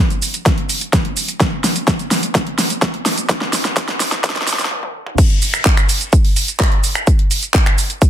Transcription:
0.10 closed hi-hat, shaker
0.22 open hi-hat, shaker
0.34 closed hi-hat, shaker
0.46 kick, snare, closed hi-hat, shaker
0.58 closed hi-hat
0.69 open hi-hat, shaker
0.81 closed hi-hat, shaker
0.93 kick, snare, closed hi-hat, shaker
1.05 closed hi-hat
1.17 open hi-hat, shaker
1.28 closed hi-hat, shaker
1.40 kick, snare, closed hi-hat, shaker
1.64 snare, open hi-hat, shaker
1.76 closed hi-hat, shaker
1.88 kick, snare, closed hi-hat, shaker
1.99 closed hi-hat, shaker
2.11 snare, open hi-hat, shaker
2.23 closed hi-hat, shaker
2.35 kick, snare, closed hi-hat, shaker
2.47 closed hi-hat
2.58 snare, open hi-hat, shaker
2.70 closed hi-hat, shaker
2.82 kick, snare, closed hi-hat, shaker
2.94 closed hi-hat
3.06 snare, open hi-hat, shaker
3.18 closed hi-hat, shaker
3.29 kick, snare, closed hi-hat, shaker
3.41 snare
3.53 snare, open hi-hat, shaker
3.65 snare, closed hi-hat, shaker
3.77 kick, snare, closed hi-hat, shaker
3.88 snare, closed hi-hat, shaker
4.00 snare, open hi-hat, shaker
4.12 snare, closed hi-hat, shaker
4.24 kick, snare, closed hi-hat, shaker
4.30 snare
4.36 snare, closed hi-hat
4.42 snare
4.47 snare, open hi-hat, shaker
4.53 snare
4.59 snare, closed hi-hat, shaker
4.65 snare
4.71 high tom
4.83 high tom
5.06 mid tom
5.18 kick, closed hi-hat, crash, shaker
5.30 closed hi-hat
5.42 open hi-hat, shaker
5.54 finger snap, closed hi-hat, shaker
5.65 kick, clap, closed hi-hat, shaker
5.77 finger snap, closed hi-hat, shaker
5.89 open hi-hat, shaker
6.01 closed hi-hat, shaker
6.13 kick, closed hi-hat, shaker
6.25 open hi-hat
6.36 open hi-hat, shaker
6.48 closed hi-hat, shaker
6.60 kick, clap, closed hi-hat, shaker
6.72 closed hi-hat
6.84 open hi-hat, shaker
6.95 finger snap, closed hi-hat, shaker
7.07 kick, closed hi-hat, shaker
7.19 closed hi-hat
7.31 open hi-hat, shaker
7.43 closed hi-hat, shaker
7.54 kick, clap, closed hi-hat, shaker
7.66 finger snap, closed hi-hat, shaker
7.78 open hi-hat, shaker
7.90 closed hi-hat, shaker
8.02 kick, closed hi-hat, shaker

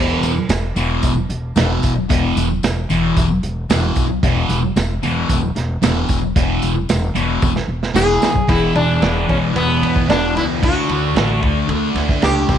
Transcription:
Already playing: E1 E2 B2 E3
0.22 E1, closed hi-hat, tambourine
0.49 E1, snare, closed hi-hat, tambourine
0.76 E1 E2 B2 E3, closed hi-hat, tambourine
1.03 E1, kick, closed hi-hat, tambourine
1.29 E1, closed hi-hat
1.56 E1 E2 B2 E3, snare, closed hi-hat, tambourine
1.83 E1, kick, closed hi-hat, tambourine
2.09 E1 E2 B2 E3, kick, closed hi-hat, tambourine
2.37 E1, closed hi-hat, tambourine
2.63 E1, snare, closed hi-hat, tambourine
2.90 E1 E2 B2 E3, closed hi-hat, tambourine
3.16 E1, kick, closed hi-hat, tambourine
3.43 E1, closed hi-hat
3.70 E1 E2 B2 E3, snare, closed hi-hat, tambourine
3.96 B1, kick, closed hi-hat, tambourine
4.23 E1 E2 B2 E3, kick, closed hi-hat, tambourine
4.49 E1, closed hi-hat, tambourine
4.76 E1, snare, closed hi-hat, tambourine
5.03 E1 E2 B2 E3, closed hi-hat, tambourine
5.29 E1, kick, closed hi-hat, tambourine
5.55 E1, snare, closed hi-hat
5.82 E1 E2 B2 E3, snare, closed hi-hat, tambourine
6.09 E1, kick, closed hi-hat, tambourine
6.36 E1 E2 B2 E3, kick, closed hi-hat, tambourine
6.62 E1, closed hi-hat, tambourine
6.89 E1, snare, closed hi-hat, tambourine
7.15 E1 E2 B2 E3, closed hi-hat, tambourine
7.42 E1, kick, high tom, tambourine
7.56 snare
7.68 E1
7.83 snare
7.94 E1 E2 B2 E3 G#4, snare, tambourine
8.22 B1, snare, tambourine
8.36 kick
8.48 E1 E2 B2 E3 E4, kick, ride
8.74 E1 B2 E3 D4, ride
9.01 E1 E2 B2 E3, snare, ride
9.27 E1 B2 E3 C#4, kick, ride
9.54 E1 E2 B2 E3 B3, ride
9.82 E2, ride
9.96 kick
10.08 E1 E2 B2 E3 D4, snare, ride
10.35 C#2 B2 E3 E4, snare, ride
10.62 D2 D3 A3 D4 F#4, kick, ride
10.89 D2 A3 D4, ride
11.14 A1 D3 A3, snare, ride
11.19 D4
11.41 D2 A3 D4, kick, ride
11.68 D2 D3 A3 D4, ride
11.94 D2, snare, ride
12.09 kick, snare
12.21 C#2 D3 A3 D4 G4, snare, ride
12.48 C2 C3 G3 C4, kick, snare, ride

